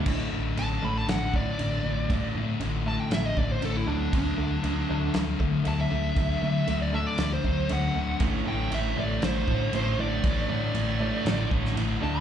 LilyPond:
<<
  \new Staff \with { instrumentName = "Lead electric guitar" } { \time 4/4 \key d \major \tempo 4 = 118 r4 a''8 b''16 a''16 fis''8 d''4.~ | d''8 r4 a''16 g''16 e''16 dis''16 d''16 c''16 a'16 e'16 d'8 | d'2 r4 a''16 e''8.~ | e''4~ e''16 d''16 e''16 d''8 c''8. fis''4 |
r8 g''8 e''8 d''8 c''4 c''8 d''8~ | d''8 d''2 r4 a''16 r16 | }
  \new Staff \with { instrumentName = "Distorted electric guitar" } { \clef bass \time 4/4 \key d \major <a, d e a d'>8 <a, d e a d'>8 <a, d e a d'>8 <a, d e a d'>8 <a, d e a d'>8 <a, d e a d'>8 <a, d e a d'>8 <a, d e a d'>8 | <a, d e a d'>8 <a, d e a d'>8 <a, d e a d'>8 <a, d e a d'>8 <a, d e a d'>8 <a, d e a d'>8 <a, d e a d'>8 <d fis a d'>8 | <d fis a d'>8 <d fis a d'>8 <d fis a d'>8 <d fis a d'>8 <d fis a d'>8 <d fis a d'>8 <d fis a d'>8 <d fis a d'>8 | <d fis a d'>8 <d fis a d'>8 <d fis a d'>8 <d fis a d'>8 <d fis a d'>8 <d fis a d'>8 <d fis a d'>8 <d fis a d'>8 |
<a, d e a d'>8 <a, d e a d'>8 <a, d e a d'>8 <a, d e a d'>8 <a, d e a d'>8 <a, d e a d'>8 <a, d e a d'>8 <a, d e a d'>8 | <a, d e a d'>8 <a, d e a d'>8 <a, d e a d'>8 <a, d e a d'>8 <a, d e a d'>8 <a, d e a d'>8 <a, d e a d'>8 <d fis a d'>8 | }
  \new Staff \with { instrumentName = "Distorted electric guitar" } { \clef bass \time 4/4 \key d \major r1 | r1 | r1 | r1 |
<a, e a>8 <a, e a>8 <a, e a>8 <a, e a>8 <a, e a>8 <a, e a>8 <a, e a>8 <a, e a>8 | <a, e a>8 <a, e a>8 <a, e a>8 <a, e a>8 <a, e a>8 <a, e a>8 <a, e a>8 <d a d'>8 | }
  \new Staff \with { instrumentName = "Clean electric guitar" } { \clef bass \time 4/4 \key d \major <a, d a>8 <a, d>8 <a, d>8 <a, d a>8 <a, d>8 <a, d>8 <a, d>8 <a, d>8 | <a, d>8 <a, d>8 <a, d>8 <a, d a>8 <a, d>8 <a, d>8 <a, d>8 <d a d'>8 | <d a>8 <d a>8 <d a>8 <d a d'>8 <d a>8 <d a>8 <d a>8 <d a>8 | <d a>8 <d a>8 <d a>8 <d a d'>8 <d a>8 <d a>8 <d a>8 <d a>8 |
<a, e a>8 <a, e>8 <a, e>8 <a, e a>8 <a, e>8 <a, e>8 <a, e>8 <a, e>8 | <a, e>8 <a, e>8 <a, e>8 <a, e a>8 <a, e>8 <a, e>8 <a, e>8 <d a d'>8 | }
  \new Staff \with { instrumentName = "Picked electric bass" } { \clef bass \time 4/4 \key d \major a,,8 a,,8 a,,8 a,,8 a,,8 a,8 a,,8 a,,8 | a,,8 a,8 a,,4 a,,8 a,,8 a,,8 d,8 | d,8 d,8 d,8 d,8 d,8 d8 d,8 d,8 | d,8 d8 d,4 d,8 d,8 d,8 d,8 |
a,,8 a,,8 a,,8 a,,8 a,,8 a,8 a,,8 a,,8 | a,,8 a,8 a,,4 a,,8 a,,8 a,,8 d,8 | }
  \new DrumStaff \with { instrumentName = "Drums" } \drummode { \time 4/4 <cymc bd>4 cymc4 <cymc sn>8 bd8 cymc4 | <cymc bd>4 cymc4 <cymc sn>8 bd8 cymc4 | <cymc bd>4 cymc4 <cymc sn>8 bd8 cymc4 | <cymc bd>4 cymc4 <cymc sn>8 bd8 cymc4 |
<cymc bd>4 cymc4 <cymc sn>8 bd8 cymc4 | <cymc bd>4 cymc4 <cymc sn>8 bd16 sn16 cymc4 | }
>>